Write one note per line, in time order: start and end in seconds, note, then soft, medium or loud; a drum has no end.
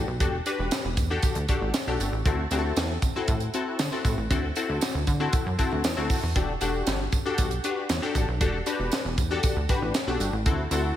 0.08 0.22 B1 medium
0.20 0.42 E1 loud
0.20 0.37 D4 medium
0.20 0.37 F#4 medium
0.20 0.37 G4 medium
0.20 0.38 A4 medium
0.20 kick loud
0.20 closed hi-hat medium
0.46 0.89 D4 medium
0.46 0.89 F#4 medium
0.46 0.89 G4 medium
0.46 0.89 B4 medium
0.46 closed hi-hat medium
0.46 tambourine medium
0.59 0.70 E1 medium
0.71 snare loud
0.71 closed hi-hat medium
0.71 tambourine medium
0.85 0.99 E1 medium
0.97 1.18 E2 loud
0.97 kick medium
0.97 closed hi-hat medium
0.97 tambourine medium
1.10 1.36 D4 medium
1.10 1.36 F#4 medium
1.10 1.36 G4 medium
1.10 1.36 A4 loud
1.22 kick loud
1.22 closed hi-hat loud
1.22 tambourine medium
1.35 1.46 D2 medium
1.35 closed hi-hat medium
1.48 1.74 D4 medium
1.48 1.74 F#4 medium
1.48 1.74 G4 medium
1.48 1.75 A4 medium
1.48 kick medium
1.48 closed hi-hat medium
1.61 1.72 A1 medium
1.74 snare loud
1.74 closed hi-hat medium
1.74 tambourine medium
1.87 1.98 B1 medium
1.87 2.13 D4 medium
1.87 2.13 F#4 medium
1.87 2.13 G4 medium
1.87 2.13 A4 medium
2.00 2.11 G1 medium
2.00 closed hi-hat medium
2.00 tambourine medium
2.12 2.23 A1 medium
2.26 2.47 D2 loud
2.26 2.43 C4 medium
2.26 2.43 E4 medium
2.26 2.43 F#4 medium
2.26 2.43 A4 medium
2.26 kick loud
2.26 closed hi-hat medium
2.51 2.72 D2 loud
2.51 2.94 C4 medium
2.51 2.94 E4 medium
2.51 2.94 F#4 medium
2.51 2.58 G4 medium
2.51 closed hi-hat medium
2.51 tambourine medium
2.59 2.97 A4 loud
2.76 2.98 E2 medium
2.76 snare loud
2.76 closed hi-hat medium
2.76 tambourine medium
3.02 kick loud
3.02 closed hi-hat medium
3.02 tambourine medium
3.16 3.41 C4 medium
3.16 3.41 E4 medium
3.16 3.41 F#4 medium
3.16 3.41 A4 loud
3.28 3.49 A2 loud
3.28 kick loud
3.28 closed hi-hat loud
3.28 tambourine medium
3.40 closed hi-hat medium
3.54 3.79 C4 medium
3.54 3.79 E4 medium
3.54 3.80 F#4 medium
3.54 3.80 A4 medium
3.54 closed hi-hat medium
3.79 3.90 D3 loud
3.79 snare loud
3.79 closed hi-hat medium
3.79 tambourine medium
3.92 4.18 C4 medium
3.92 4.18 E4 medium
3.92 4.18 F#4 medium
3.92 4.18 A4 medium
4.05 4.15 A2 medium
4.05 kick medium
4.05 closed hi-hat medium
4.05 tambourine medium
4.18 4.28 A1 medium
4.30 4.52 D2 loud
4.30 4.47 C4 medium
4.30 4.48 E4 medium
4.30 4.48 F#4 medium
4.30 4.48 A4 medium
4.30 kick loud
4.30 closed hi-hat medium
4.30 tambourine soft
4.55 4.99 C4 medium
4.55 4.99 E4 medium
4.55 4.99 F#4 medium
4.55 4.99 A4 medium
4.55 closed hi-hat medium
4.55 tambourine medium
4.69 4.80 D2 medium
4.81 snare loud
4.81 closed hi-hat loud
4.81 tambourine medium
4.95 5.05 D2 loud
5.07 5.29 D3 loud
5.07 kick medium
5.07 closed hi-hat medium
5.07 tambourine soft
5.20 5.46 C4 medium
5.20 5.46 E4 medium
5.20 5.46 F#4 medium
5.20 5.46 A4 medium
5.33 kick loud
5.33 closed hi-hat loud
5.33 tambourine soft
5.46 5.57 F#2 medium
5.58 5.84 C4 medium
5.58 5.84 E4 medium
5.58 5.84 F#4 medium
5.58 5.84 A4 medium
5.58 kick medium
5.58 closed hi-hat medium
5.58 tambourine soft
5.72 5.82 D2 medium
5.84 5.95 E2 medium
5.84 snare loud
5.84 closed hi-hat medium
5.84 tambourine medium
5.97 6.08 D2 medium
5.97 6.22 C4 medium
5.97 6.23 E4 medium
5.97 6.23 F#4 medium
5.97 6.23 A4 medium
6.10 kick medium
6.10 open hi-hat medium
6.10 tambourine medium
6.23 6.34 E2 medium
6.35 6.57 E1 loud
6.35 6.53 D4 medium
6.35 6.53 F#4 medium
6.35 6.53 G4 medium
6.35 6.53 A4 medium
6.35 kick loud
6.35 closed hi-hat medium
6.35 tambourine soft
6.61 6.83 E1 loud
6.61 7.04 D4 medium
6.61 7.04 F#4 medium
6.61 7.04 G4 medium
6.61 7.04 A4 medium
6.61 closed hi-hat medium
6.61 tambourine medium
6.86 7.08 G1 medium
6.86 snare loud
6.86 closed hi-hat medium
6.86 tambourine medium
7.12 kick loud
7.12 closed hi-hat medium
7.12 tambourine soft
7.26 7.51 D4 medium
7.26 7.51 F#4 medium
7.26 7.51 G4 medium
7.26 7.51 A4 loud
7.38 7.60 B1 loud
7.38 kick loud
7.38 closed hi-hat loud
7.38 tambourine medium
7.51 closed hi-hat medium
7.64 7.90 D4 medium
7.64 7.90 F#4 medium
7.64 7.90 G4 medium
7.64 7.90 B4 medium
7.64 closed hi-hat medium
7.89 8.00 E2 loud
7.89 snare loud
7.89 closed hi-hat medium
7.89 tambourine medium
8.02 8.28 D4 medium
8.02 8.28 F#4 medium
8.02 8.28 G4 medium
8.02 8.28 A4 medium
8.15 8.26 A1 medium
8.15 kick medium
8.15 closed hi-hat medium
8.15 tambourine medium
8.28 8.43 B1 medium
8.40 8.62 E1 loud
8.40 8.58 D4 medium
8.40 8.58 F#4 medium
8.40 8.58 G4 medium
8.40 8.58 A4 medium
8.40 kick loud
8.40 closed hi-hat medium
8.40 tambourine soft
8.66 9.09 D4 medium
8.66 9.09 F#4 medium
8.66 9.09 G4 medium
8.66 9.09 B4 loud
8.66 closed hi-hat medium
8.66 tambourine medium
8.80 8.90 E1 medium
8.92 snare loud
8.92 closed hi-hat medium
8.92 tambourine medium
9.05 9.19 E1 loud
9.18 9.39 E2 loud
9.18 kick medium
9.18 closed hi-hat medium
9.18 tambourine medium
9.31 9.56 D4 medium
9.31 9.56 F#4 medium
9.31 9.56 G4 medium
9.31 9.56 A4 medium
9.43 kick loud
9.43 closed hi-hat medium
9.43 tambourine medium
9.56 9.67 D2 medium
9.69 9.95 D4 medium
9.69 9.95 F#4 medium
9.69 9.95 G4 medium
9.69 9.95 B4 medium
9.69 kick medium
9.69 closed hi-hat medium
9.69 tambourine soft
9.82 9.92 A1 medium
9.94 snare loud
9.94 closed hi-hat medium
9.94 tambourine medium
10.07 10.18 B1 medium
10.07 10.33 D4 medium
10.07 10.33 F#4 medium
10.07 10.33 G4 medium
10.07 10.33 A4 medium
10.20 10.31 G1 medium
10.20 closed hi-hat medium
10.20 tambourine medium
10.33 10.48 A1 medium
10.46 10.67 D2 loud
10.46 10.63 C4 medium
10.46 10.63 E4 medium
10.46 10.63 F#4 medium
10.46 10.63 A4 medium
10.46 kick loud
10.46 closed hi-hat medium
10.71 10.92 D2 loud
10.71 10.96 C4 medium
10.71 10.96 E4 medium
10.71 10.96 F#4 medium
10.71 10.96 A4 medium
10.71 closed hi-hat medium
10.71 tambourine medium